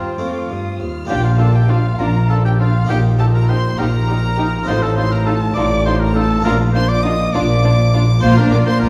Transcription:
Already playing: harpsichord D#2 F4, cello section D#2, violin section C4 A#5, viola section F4, oboe F4
0.18 cello section F2, harpsichord F2 A3 C4 F4, viola section F4, violin section D6
0.49 cello section G2, harpsichord G2, violin section D#6
0.79 cello section D#2, harpsichord D#2, violin section F6
1.05 harpsichord A#3 D4 F4, viola section D4, oboe G4, violin section G5
1.09 double bass section A#1, cello section A#2, harpsichord A#2, violin section F4
1.24 oboe F4, violin section F5
1.38 viola section D4, violin section F4 A5, oboe A4
1.54 oboe G4, violin section G5
1.67 viola section D4, violin section F4 F5, oboe F4
1.98 double bass section A#1, harpsichord A#2, cello section A#2, viola section D4, violin section F4 A#5, oboe A#4
2.28 viola section D4, violin section F4 A5, oboe A4
2.45 oboe G4, violin section G5
2.59 viola section D4, violin section F4 F5, oboe F4
2.85 harpsichord A#3 D#4 G4, violin section G5
2.89 double bass section A#1, harpsichord A#2, cello section A#2, viola section D#4, violin section G4, oboe G4
3.19 viola section D#4, violin section G4 A5, oboe A4
3.34 oboe A#4, violin section A#5
3.49 viola section D#4, violin section G4 C6, oboe C5
3.78 double bass section A#1, harpsichord A#2, cello section A#2, viola section D#4, violin section G4 A#5, oboe A#4
4.08 viola section D#4, violin section G4
4.38 viola section D#4, violin section G4
4.63 harpsichord C4 D#4 F4
4.67 double bass section A1, harpsichord A2, cello section A2, viola section D#4, violin section F4 C6, oboe C5
4.82 oboe A4, violin section A5
4.97 viola section D#4, violin section F4 C6, oboe C5
5.11 oboe A#4, violin section A#5
5.26 viola section D#4, violin section F4 A5, oboe A4
5.55 double bass section A1, harpsichord A2, cello section A2, viola section D#4, violin section F4 D6, oboe D5
5.86 viola section D#4, violin section F4 C6, oboe C5
6.00 oboe A#4, violin section A#5
6.15 viola section D#4, violin section F4 A5, oboe A4
6.41 harpsichord A#3 D4 F4, oboe A#4
6.45 double bass section A#1, cello section A#2, harpsichord A#2, viola section D4, violin section F4 A#5
6.73 viola section D4, violin section F4 C6, oboe C5
6.88 oboe D5, violin section D6
7.03 viola section D4, violin section F4 D#6, oboe D#5
7.33 double bass section A#1, cello section A#2, harpsichord A#2, viola section D4, violin section F4 D6, oboe D5
7.64 viola section D4, violin section F4
7.94 viola section D4, violin section F4
8.18 harpsichord A#3 D4 F4, oboe C5
8.22 double bass section A#1, cello section A#2, harpsichord A#2, viola section A#3, violin section F4 C6
8.37 viola section D4, oboe A#4, violin section A#4 A#5
8.51 double bass section A#1, cello section A#2, harpsichord A#2, viola section A#3, violin section F4 D6, oboe D5
8.66 viola section D4, violin section A#4 C6, oboe C5
8.79 double bass section A#1, cello section A#2, harpsichord A#2, viola section A#3, violin section F4 A#5, oboe A#4

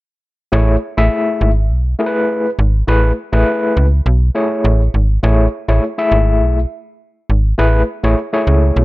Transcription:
0.52 fm bass A1, tine electric piano A3 E4 G#4 C#5
0.97 fm bass A1, tine electric piano A3 E4 G#4 E5
1.41 fm bass G#1
1.70 fm bass B1
1.99 tine electric piano A3 E4 G#4 A#4
2.06 tine electric piano B4
2.59 fm bass G#1
2.88 fm bass A1, tine electric piano A3 E4 G#4 B4
3.33 fm bass A1, tine electric piano A3 E4 G#4 B4
3.77 fm bass C#2
4.06 fm bass B1
4.35 tine electric piano A3 E4 G#4 C#5
4.65 fm bass A1
4.94 fm bass G#1
5.23 fm bass A1, tine electric piano A3 E4 G#4 C#5
5.68 fm bass A1, tine electric piano A3 E4 G#4 C#5
5.98 tine electric piano A3 E4 G#4 E5
6.12 fm bass G#1
6.41 fm bass B1
7.30 fm bass G#1
7.58 fm bass A1, tine electric piano A3 E4 G#4 B4
8.04 fm bass A1, tine electric piano A3 E4 G#4 C#5
8.33 tine electric piano A3 E4 G#4 C#5
8.47 fm bass C#2
8.76 fm bass B1

